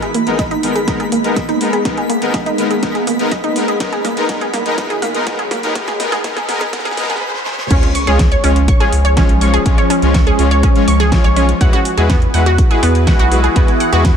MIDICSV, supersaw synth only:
0, 0, Header, 1, 2, 480
1, 0, Start_track
1, 0, Tempo, 487805
1, 1822, Time_signature, 4, 2, 24, 8
1, 13941, End_track
2, 0, Start_track
2, 0, Title_t, "Supersaw synth"
2, 0, Program_c, 0, 81
2, 263, Note_on_c, 0, 56, 70
2, 263, Note_on_c, 0, 59, 64
2, 263, Note_on_c, 0, 63, 65
2, 263, Note_on_c, 0, 70, 78
2, 394, Note_off_c, 0, 56, 0
2, 394, Note_off_c, 0, 59, 0
2, 394, Note_off_c, 0, 63, 0
2, 394, Note_off_c, 0, 70, 0
2, 622, Note_on_c, 0, 56, 76
2, 622, Note_on_c, 0, 59, 72
2, 622, Note_on_c, 0, 63, 71
2, 622, Note_on_c, 0, 70, 82
2, 705, Note_off_c, 0, 56, 0
2, 705, Note_off_c, 0, 59, 0
2, 705, Note_off_c, 0, 63, 0
2, 705, Note_off_c, 0, 70, 0
2, 862, Note_on_c, 0, 56, 80
2, 862, Note_on_c, 0, 59, 75
2, 862, Note_on_c, 0, 63, 73
2, 862, Note_on_c, 0, 70, 92
2, 994, Note_off_c, 0, 56, 0
2, 994, Note_off_c, 0, 59, 0
2, 994, Note_off_c, 0, 63, 0
2, 994, Note_off_c, 0, 70, 0
2, 1223, Note_on_c, 0, 56, 73
2, 1223, Note_on_c, 0, 59, 67
2, 1223, Note_on_c, 0, 63, 66
2, 1223, Note_on_c, 0, 70, 81
2, 1354, Note_off_c, 0, 56, 0
2, 1354, Note_off_c, 0, 59, 0
2, 1354, Note_off_c, 0, 63, 0
2, 1354, Note_off_c, 0, 70, 0
2, 1582, Note_on_c, 0, 56, 81
2, 1582, Note_on_c, 0, 59, 74
2, 1582, Note_on_c, 0, 63, 72
2, 1582, Note_on_c, 0, 70, 88
2, 1665, Note_off_c, 0, 56, 0
2, 1665, Note_off_c, 0, 59, 0
2, 1665, Note_off_c, 0, 63, 0
2, 1665, Note_off_c, 0, 70, 0
2, 1822, Note_on_c, 0, 56, 81
2, 1822, Note_on_c, 0, 59, 74
2, 1822, Note_on_c, 0, 63, 75
2, 1822, Note_on_c, 0, 70, 89
2, 1954, Note_off_c, 0, 56, 0
2, 1954, Note_off_c, 0, 59, 0
2, 1954, Note_off_c, 0, 63, 0
2, 1954, Note_off_c, 0, 70, 0
2, 2183, Note_on_c, 0, 56, 72
2, 2183, Note_on_c, 0, 59, 69
2, 2183, Note_on_c, 0, 63, 67
2, 2183, Note_on_c, 0, 70, 84
2, 2314, Note_off_c, 0, 56, 0
2, 2314, Note_off_c, 0, 59, 0
2, 2314, Note_off_c, 0, 63, 0
2, 2314, Note_off_c, 0, 70, 0
2, 2542, Note_on_c, 0, 56, 80
2, 2542, Note_on_c, 0, 59, 74
2, 2542, Note_on_c, 0, 63, 70
2, 2542, Note_on_c, 0, 70, 87
2, 2625, Note_off_c, 0, 56, 0
2, 2625, Note_off_c, 0, 59, 0
2, 2625, Note_off_c, 0, 63, 0
2, 2625, Note_off_c, 0, 70, 0
2, 2782, Note_on_c, 0, 56, 85
2, 2782, Note_on_c, 0, 59, 78
2, 2782, Note_on_c, 0, 63, 78
2, 2782, Note_on_c, 0, 70, 90
2, 2914, Note_off_c, 0, 56, 0
2, 2914, Note_off_c, 0, 59, 0
2, 2914, Note_off_c, 0, 63, 0
2, 2914, Note_off_c, 0, 70, 0
2, 3143, Note_on_c, 0, 56, 75
2, 3143, Note_on_c, 0, 59, 71
2, 3143, Note_on_c, 0, 63, 70
2, 3143, Note_on_c, 0, 70, 85
2, 3274, Note_off_c, 0, 56, 0
2, 3274, Note_off_c, 0, 59, 0
2, 3274, Note_off_c, 0, 63, 0
2, 3274, Note_off_c, 0, 70, 0
2, 3502, Note_on_c, 0, 56, 83
2, 3502, Note_on_c, 0, 59, 76
2, 3502, Note_on_c, 0, 63, 76
2, 3502, Note_on_c, 0, 70, 92
2, 3585, Note_off_c, 0, 56, 0
2, 3585, Note_off_c, 0, 59, 0
2, 3585, Note_off_c, 0, 63, 0
2, 3585, Note_off_c, 0, 70, 0
2, 3742, Note_on_c, 0, 56, 84
2, 3742, Note_on_c, 0, 59, 77
2, 3742, Note_on_c, 0, 63, 76
2, 3742, Note_on_c, 0, 70, 97
2, 3874, Note_off_c, 0, 56, 0
2, 3874, Note_off_c, 0, 59, 0
2, 3874, Note_off_c, 0, 63, 0
2, 3874, Note_off_c, 0, 70, 0
2, 4103, Note_on_c, 0, 56, 78
2, 4103, Note_on_c, 0, 59, 71
2, 4103, Note_on_c, 0, 63, 72
2, 4103, Note_on_c, 0, 70, 83
2, 4203, Note_off_c, 0, 56, 0
2, 4203, Note_off_c, 0, 59, 0
2, 4203, Note_off_c, 0, 63, 0
2, 4203, Note_off_c, 0, 70, 0
2, 4222, Note_on_c, 0, 56, 87
2, 4222, Note_on_c, 0, 59, 84
2, 4222, Note_on_c, 0, 63, 81
2, 4222, Note_on_c, 0, 70, 96
2, 4354, Note_off_c, 0, 56, 0
2, 4354, Note_off_c, 0, 59, 0
2, 4354, Note_off_c, 0, 63, 0
2, 4354, Note_off_c, 0, 70, 0
2, 4583, Note_on_c, 0, 56, 78
2, 4583, Note_on_c, 0, 59, 70
2, 4583, Note_on_c, 0, 63, 72
2, 4583, Note_on_c, 0, 70, 87
2, 4683, Note_off_c, 0, 56, 0
2, 4683, Note_off_c, 0, 59, 0
2, 4683, Note_off_c, 0, 63, 0
2, 4683, Note_off_c, 0, 70, 0
2, 4702, Note_on_c, 0, 56, 86
2, 4702, Note_on_c, 0, 59, 81
2, 4702, Note_on_c, 0, 63, 82
2, 4702, Note_on_c, 0, 70, 95
2, 4834, Note_off_c, 0, 56, 0
2, 4834, Note_off_c, 0, 59, 0
2, 4834, Note_off_c, 0, 63, 0
2, 4834, Note_off_c, 0, 70, 0
2, 5063, Note_on_c, 0, 56, 76
2, 5063, Note_on_c, 0, 59, 74
2, 5063, Note_on_c, 0, 63, 72
2, 5063, Note_on_c, 0, 70, 89
2, 5163, Note_off_c, 0, 56, 0
2, 5163, Note_off_c, 0, 59, 0
2, 5163, Note_off_c, 0, 63, 0
2, 5163, Note_off_c, 0, 70, 0
2, 5182, Note_on_c, 0, 56, 90
2, 5182, Note_on_c, 0, 59, 81
2, 5182, Note_on_c, 0, 63, 79
2, 5182, Note_on_c, 0, 70, 99
2, 5314, Note_off_c, 0, 56, 0
2, 5314, Note_off_c, 0, 59, 0
2, 5314, Note_off_c, 0, 63, 0
2, 5314, Note_off_c, 0, 70, 0
2, 5543, Note_on_c, 0, 56, 78
2, 5543, Note_on_c, 0, 59, 70
2, 5543, Note_on_c, 0, 63, 73
2, 5543, Note_on_c, 0, 70, 86
2, 5643, Note_off_c, 0, 56, 0
2, 5643, Note_off_c, 0, 59, 0
2, 5643, Note_off_c, 0, 63, 0
2, 5643, Note_off_c, 0, 70, 0
2, 5662, Note_on_c, 0, 56, 90
2, 5662, Note_on_c, 0, 59, 78
2, 5662, Note_on_c, 0, 63, 82
2, 5662, Note_on_c, 0, 70, 96
2, 5794, Note_off_c, 0, 56, 0
2, 5794, Note_off_c, 0, 59, 0
2, 5794, Note_off_c, 0, 63, 0
2, 5794, Note_off_c, 0, 70, 0
2, 5902, Note_on_c, 0, 56, 87
2, 5902, Note_on_c, 0, 59, 82
2, 5902, Note_on_c, 0, 63, 83
2, 5902, Note_on_c, 0, 70, 98
2, 6034, Note_off_c, 0, 56, 0
2, 6034, Note_off_c, 0, 59, 0
2, 6034, Note_off_c, 0, 63, 0
2, 6034, Note_off_c, 0, 70, 0
2, 6142, Note_on_c, 0, 56, 92
2, 6142, Note_on_c, 0, 59, 83
2, 6142, Note_on_c, 0, 63, 83
2, 6142, Note_on_c, 0, 70, 98
2, 6274, Note_off_c, 0, 56, 0
2, 6274, Note_off_c, 0, 59, 0
2, 6274, Note_off_c, 0, 63, 0
2, 6274, Note_off_c, 0, 70, 0
2, 6382, Note_on_c, 0, 56, 90
2, 6382, Note_on_c, 0, 59, 83
2, 6382, Note_on_c, 0, 63, 82
2, 6382, Note_on_c, 0, 70, 100
2, 6514, Note_off_c, 0, 56, 0
2, 6514, Note_off_c, 0, 59, 0
2, 6514, Note_off_c, 0, 63, 0
2, 6514, Note_off_c, 0, 70, 0
2, 6623, Note_on_c, 0, 56, 91
2, 6623, Note_on_c, 0, 59, 81
2, 6623, Note_on_c, 0, 63, 82
2, 6623, Note_on_c, 0, 70, 98
2, 6754, Note_off_c, 0, 56, 0
2, 6754, Note_off_c, 0, 59, 0
2, 6754, Note_off_c, 0, 63, 0
2, 6754, Note_off_c, 0, 70, 0
2, 6862, Note_on_c, 0, 56, 90
2, 6862, Note_on_c, 0, 59, 83
2, 6862, Note_on_c, 0, 70, 105
2, 6863, Note_on_c, 0, 63, 86
2, 6994, Note_off_c, 0, 56, 0
2, 6994, Note_off_c, 0, 59, 0
2, 6994, Note_off_c, 0, 63, 0
2, 6994, Note_off_c, 0, 70, 0
2, 7583, Note_on_c, 0, 56, 86
2, 7583, Note_on_c, 0, 61, 80
2, 7583, Note_on_c, 0, 65, 79
2, 7583, Note_on_c, 0, 73, 97
2, 7714, Note_off_c, 0, 65, 0
2, 7715, Note_off_c, 0, 56, 0
2, 7715, Note_off_c, 0, 61, 0
2, 7715, Note_off_c, 0, 73, 0
2, 7943, Note_on_c, 0, 56, 79
2, 7943, Note_on_c, 0, 61, 71
2, 7943, Note_on_c, 0, 65, 70
2, 7943, Note_on_c, 0, 73, 88
2, 8074, Note_off_c, 0, 56, 0
2, 8074, Note_off_c, 0, 61, 0
2, 8074, Note_off_c, 0, 65, 0
2, 8074, Note_off_c, 0, 73, 0
2, 8302, Note_on_c, 0, 56, 86
2, 8302, Note_on_c, 0, 61, 78
2, 8302, Note_on_c, 0, 65, 77
2, 8302, Note_on_c, 0, 73, 91
2, 8385, Note_off_c, 0, 56, 0
2, 8385, Note_off_c, 0, 61, 0
2, 8385, Note_off_c, 0, 65, 0
2, 8385, Note_off_c, 0, 73, 0
2, 8663, Note_on_c, 0, 56, 100
2, 8663, Note_on_c, 0, 61, 88
2, 8663, Note_on_c, 0, 65, 90
2, 8663, Note_on_c, 0, 73, 110
2, 8745, Note_off_c, 0, 56, 0
2, 8745, Note_off_c, 0, 61, 0
2, 8745, Note_off_c, 0, 65, 0
2, 8745, Note_off_c, 0, 73, 0
2, 9022, Note_on_c, 0, 56, 78
2, 9022, Note_on_c, 0, 61, 70
2, 9022, Note_on_c, 0, 65, 73
2, 9022, Note_on_c, 0, 73, 85
2, 9154, Note_off_c, 0, 56, 0
2, 9154, Note_off_c, 0, 61, 0
2, 9154, Note_off_c, 0, 65, 0
2, 9154, Note_off_c, 0, 73, 0
2, 9262, Note_on_c, 0, 56, 91
2, 9262, Note_on_c, 0, 61, 84
2, 9262, Note_on_c, 0, 65, 90
2, 9262, Note_on_c, 0, 73, 106
2, 9345, Note_off_c, 0, 56, 0
2, 9345, Note_off_c, 0, 61, 0
2, 9345, Note_off_c, 0, 65, 0
2, 9345, Note_off_c, 0, 73, 0
2, 9502, Note_on_c, 0, 56, 86
2, 9502, Note_on_c, 0, 61, 80
2, 9502, Note_on_c, 0, 65, 78
2, 9502, Note_on_c, 0, 73, 94
2, 9634, Note_off_c, 0, 56, 0
2, 9634, Note_off_c, 0, 61, 0
2, 9634, Note_off_c, 0, 65, 0
2, 9634, Note_off_c, 0, 73, 0
2, 9863, Note_on_c, 0, 56, 78
2, 9863, Note_on_c, 0, 61, 70
2, 9863, Note_on_c, 0, 65, 71
2, 9863, Note_on_c, 0, 73, 88
2, 9994, Note_off_c, 0, 56, 0
2, 9994, Note_off_c, 0, 61, 0
2, 9994, Note_off_c, 0, 65, 0
2, 9994, Note_off_c, 0, 73, 0
2, 10223, Note_on_c, 0, 56, 86
2, 10223, Note_on_c, 0, 61, 76
2, 10223, Note_on_c, 0, 65, 78
2, 10223, Note_on_c, 0, 73, 90
2, 10305, Note_off_c, 0, 56, 0
2, 10305, Note_off_c, 0, 61, 0
2, 10305, Note_off_c, 0, 65, 0
2, 10305, Note_off_c, 0, 73, 0
2, 10583, Note_on_c, 0, 56, 98
2, 10583, Note_on_c, 0, 61, 89
2, 10583, Note_on_c, 0, 65, 90
2, 10583, Note_on_c, 0, 73, 113
2, 10665, Note_off_c, 0, 56, 0
2, 10665, Note_off_c, 0, 61, 0
2, 10665, Note_off_c, 0, 65, 0
2, 10665, Note_off_c, 0, 73, 0
2, 10943, Note_on_c, 0, 56, 79
2, 10943, Note_on_c, 0, 61, 69
2, 10943, Note_on_c, 0, 65, 72
2, 10943, Note_on_c, 0, 73, 86
2, 11074, Note_off_c, 0, 56, 0
2, 11074, Note_off_c, 0, 61, 0
2, 11074, Note_off_c, 0, 65, 0
2, 11074, Note_off_c, 0, 73, 0
2, 11182, Note_on_c, 0, 56, 98
2, 11183, Note_on_c, 0, 61, 88
2, 11183, Note_on_c, 0, 65, 85
2, 11183, Note_on_c, 0, 73, 103
2, 11265, Note_off_c, 0, 56, 0
2, 11265, Note_off_c, 0, 61, 0
2, 11265, Note_off_c, 0, 65, 0
2, 11265, Note_off_c, 0, 73, 0
2, 11423, Note_on_c, 0, 56, 86
2, 11423, Note_on_c, 0, 64, 78
2, 11423, Note_on_c, 0, 66, 82
2, 11423, Note_on_c, 0, 71, 96
2, 11554, Note_off_c, 0, 56, 0
2, 11554, Note_off_c, 0, 64, 0
2, 11554, Note_off_c, 0, 66, 0
2, 11554, Note_off_c, 0, 71, 0
2, 11783, Note_on_c, 0, 56, 79
2, 11783, Note_on_c, 0, 64, 71
2, 11783, Note_on_c, 0, 66, 73
2, 11783, Note_on_c, 0, 71, 87
2, 11914, Note_off_c, 0, 56, 0
2, 11914, Note_off_c, 0, 64, 0
2, 11914, Note_off_c, 0, 66, 0
2, 11914, Note_off_c, 0, 71, 0
2, 12142, Note_on_c, 0, 56, 85
2, 12142, Note_on_c, 0, 64, 77
2, 12142, Note_on_c, 0, 66, 77
2, 12142, Note_on_c, 0, 71, 93
2, 12225, Note_off_c, 0, 56, 0
2, 12225, Note_off_c, 0, 64, 0
2, 12225, Note_off_c, 0, 66, 0
2, 12225, Note_off_c, 0, 71, 0
2, 12503, Note_on_c, 0, 56, 99
2, 12503, Note_on_c, 0, 64, 88
2, 12503, Note_on_c, 0, 66, 90
2, 12503, Note_on_c, 0, 71, 107
2, 12585, Note_off_c, 0, 56, 0
2, 12585, Note_off_c, 0, 64, 0
2, 12585, Note_off_c, 0, 66, 0
2, 12585, Note_off_c, 0, 71, 0
2, 12863, Note_on_c, 0, 56, 80
2, 12863, Note_on_c, 0, 64, 71
2, 12863, Note_on_c, 0, 66, 70
2, 12863, Note_on_c, 0, 71, 86
2, 12995, Note_off_c, 0, 56, 0
2, 12995, Note_off_c, 0, 64, 0
2, 12995, Note_off_c, 0, 66, 0
2, 12995, Note_off_c, 0, 71, 0
2, 13103, Note_on_c, 0, 56, 93
2, 13103, Note_on_c, 0, 64, 85
2, 13103, Note_on_c, 0, 66, 87
2, 13103, Note_on_c, 0, 71, 104
2, 13185, Note_off_c, 0, 56, 0
2, 13185, Note_off_c, 0, 64, 0
2, 13185, Note_off_c, 0, 66, 0
2, 13185, Note_off_c, 0, 71, 0
2, 13343, Note_on_c, 0, 56, 88
2, 13343, Note_on_c, 0, 64, 79
2, 13343, Note_on_c, 0, 66, 81
2, 13343, Note_on_c, 0, 71, 92
2, 13474, Note_off_c, 0, 56, 0
2, 13474, Note_off_c, 0, 64, 0
2, 13474, Note_off_c, 0, 71, 0
2, 13475, Note_off_c, 0, 66, 0
2, 13703, Note_on_c, 0, 71, 85
2, 13704, Note_on_c, 0, 56, 80
2, 13704, Note_on_c, 0, 64, 72
2, 13704, Note_on_c, 0, 66, 74
2, 13834, Note_off_c, 0, 56, 0
2, 13834, Note_off_c, 0, 64, 0
2, 13834, Note_off_c, 0, 66, 0
2, 13834, Note_off_c, 0, 71, 0
2, 13941, End_track
0, 0, End_of_file